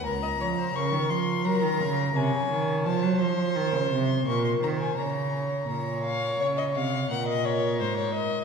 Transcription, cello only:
X:1
M:4/4
L:1/16
Q:1/4=85
K:Bbphr
V:1 name="Cello" clef=bass
D,,2 F,2 D, E, F,2 G, E, D,2 =C, D, E,2 | F, G, F,2 E, D, =C,2 B,,2 E,2 D,4 | [K:Bbm] B,,4 D,2 C,2 B,,4 A,,4 |]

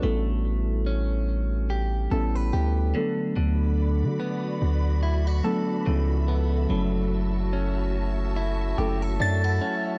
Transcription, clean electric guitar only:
X:1
M:4/4
L:1/16
Q:"Swing 16ths" 1/4=72
K:F#phr
V:1 name="Clean electric guitar"
A,4 C4 G2 A B G2 D,2 | D,4 B,4 E F A2 C,2 B,2 | F,4 C4 E2 G A D E C2 |]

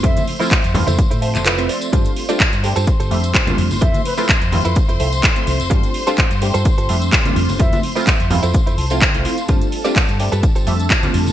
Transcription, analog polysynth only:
X:1
M:4/4
L:1/16
Q:"Swing 16ths" 1/4=127
K:Flyd
V:1 name="Analog polysynth"
[F,A,Ce]3 [F,A,CEF] z2 [F,A,CEF] z3 [F,A,Ce]3 [F,A,Ce]3 | [G,A,CDF]3 [G,A,CDF] z2 [G,A,CDG] z3 [G,A,CDe]3 [G,A,CDF]3 | [F,A,Ce]3 [F,A,CEF] z2 [F,A,CEF] z3 [F,A,Ce]3 [F,A,Ce]3 | [G,A,CDF]3 [G,A,CDF] z2 [G,A,CDG] z3 [G,A,CDe]3 [G,A,CDF]3 |
[F,A,Ce]3 [F,A,CEF] z2 [F,A,CEF] z4 [F,A,CEF] z [F,A,CEF] [F,A,CEF] z | [G,A,CDF]3 [G,A,CDF] z2 [G,A,CDG] z3 [G,A,CDe]3 [G,A,CDF]3 |]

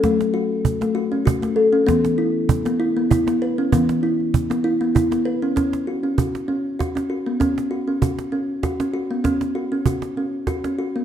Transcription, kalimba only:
X:1
M:3/4
L:1/16
Q:"Swing 16ths" 1/4=98
K:Bdor
V:1 name="Kalimba"
A,2 F2 z A, F C F A, A C | B,2 E2 z B, E B, E B, B C | B,2 E2 z B, E B, E B, B C | C2 F C F2 C2 F C F B, |
C2 F C F2 C2 F C F B, | C2 F C F2 C2 F C F B, |]
V:2 name="Kalimba" clef=bass
F,12 | E,12 | E,12 | z12 |
z12 | z12 |]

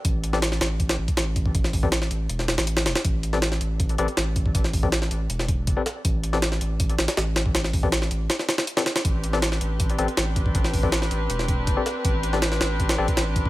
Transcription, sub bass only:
X:1
M:4/4
L:1/16
Q:1/4=160
K:Am
V:1 name="Sub bass" clef=bass
A,,,6 A,,,4 A,,, z A,,,4 | A,,,6 A,,,2 E,,,3 A,,,3 E,,, z | A,,,6 A,,,4 A,,, z A,,,4 | A,,,6 A,,,2 E,,,4 G,,, z3 |
A,,,6 A,,,4 A,,, z A,,,4 | A,,,6 A,,,2 z8 | A,,,6 A,,,4 A,,, z A,,,4 | A,,,6 A,,,2 E,,,4 G,,, z3 |
A,,,6 A,,,4 A,,, z A,,,4 |]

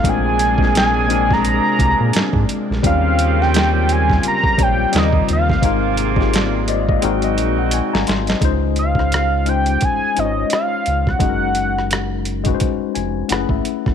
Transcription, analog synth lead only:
X:1
M:4/4
L:1/16
Q:"Swing 16ths" 1/4=86
K:Ablyd
V:1 name="Analog synth lead"
a4 a3 b6- b z2 | f3 g3 a2 b2 g2 e2 f2- | f2 z12 z2 | [K:Dblyd] z2 f4 g2 a2 e2 f3 _g- |
_g6- g z8 z |]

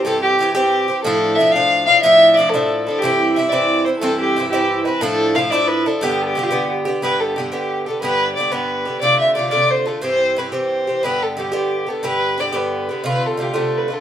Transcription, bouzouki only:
X:1
M:6/8
L:1/8
Q:3/8=120
K:Gmix
V:1 name="Bouzouki"
[G,,E,CG]2 [G,,E,CG] [G,,E,CG]2 [E,CG] | [A,,F,DE]2 [A,,F,DE] [A,,F,D]2 [F,DE] | [A,,F,DE]2 [A,,F,DE] [A,,F,DE]2 [F,DE] | [G,,E,CE]2 [G,,E,CE] [G,,E,CE]2 [E,CE] |
[G,,E,CE]2 [G,,E,CE] [G,,E,CE]2 [E,CE] | [A,,F,DE]2 [A,,F,DE] [A,,F,DE]2 [F,DE] | [G,,D,B,G]2 [G,,D,B,G] [G,,D,B,G]2 [D,B,G] | [G,,D,B,G]2 [G,,D,B,G] [G,,D,B,G]2 [D,B,G] |
[G,,D,B,G]2 [G,,D,B,G] [G,,D,B,G]2 [D,B,G] | [C,D,A,F]2 [C,D,A,F] [C,D,A,F]2 [D,A,F] | [G,,E,CG]2 [G,,E,CG] [G,,E,CG]2 [E,CG] | [G,,D,B,G]2 [G,,D,B,G] [G,,D,B,G]2 [D,B,G] |
[G,,D,B,G]2 [G,,D,B,G] [G,,D,B,G]2 [D,B,G] | [C,D,A,F]2 [C,D,A,F] [C,D,A,F]2 [D,A,F] |]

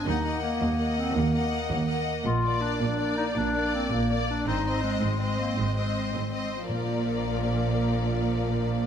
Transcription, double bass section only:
X:1
M:12/8
L:1/8
Q:3/8=108
K:Bb
V:1 name="Double bass section" clef=bass
E,,3 E,,3 E,,3 E,,3 | B,,,3 B,,,3 B,,,3 B,,,3 | _A,,,3 A,,,3 A,,,3 A,,,3 | B,,,12 |]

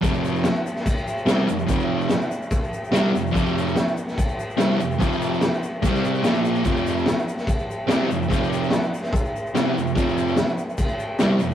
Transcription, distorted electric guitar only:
X:1
M:4/4
L:1/8
Q:1/4=145
K:Cdor
V:1 name="Distorted electric guitar" clef=bass
[F,,C,F,]2 z4 [C,G,C] [F,,C,] | [F,,C,F,]2 z4 [C,G,C] [F,,C,] | [F,,C,F,]2 z4 [C,G,C] [F,,C,] | [F,,C,F,]2 z2 [C,G,C]2 [B,,F,B,]2 |
[F,,C,F,]2 z4 [C,G,C] [F,,C,] | [F,,C,F,]2 z4 [C,G,C] [F,,C,] | [F,,C,F,]2 z4 [C,G,C] [F,,C,] |]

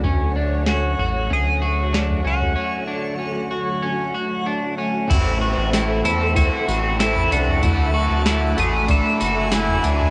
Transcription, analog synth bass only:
X:1
M:4/4
L:1/16
Q:1/4=95
K:Dlyd
V:1 name="Analog synth bass" clef=bass
D,,6 A,,,2 D,,6 C,,2 | z16 | A,,,3 A,,,3 E,,3 z A,,,4 =C,,2 | D,,3 D,,3 A,,,3 z F,,,4 D,,2 |]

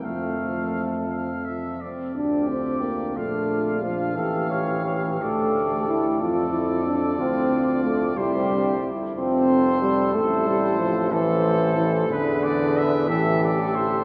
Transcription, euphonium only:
X:1
M:6/8
L:1/8
Q:3/8=60
K:F
V:1 name="Euphonium"
F,4- F, C | [K:Dm] D C B, A,2 F, | E,3 A,2 E | F E D C2 A, |
G,2 z C2 G, | A, G, F, E,2 E, | D,3 E,2 z |]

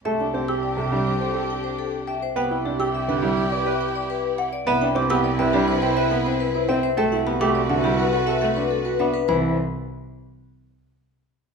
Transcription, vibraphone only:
X:1
M:4/4
L:1/16
Q:1/4=104
K:Clyd
V:1 name="Vibraphone"
e g G g d e z c A z g c A z e c | f g G g e f z d B z g d B z f d | e g G g d e G c B e g c B c e c | e f G f d e G B A e f B A B e B |
c2 z12 z2 |]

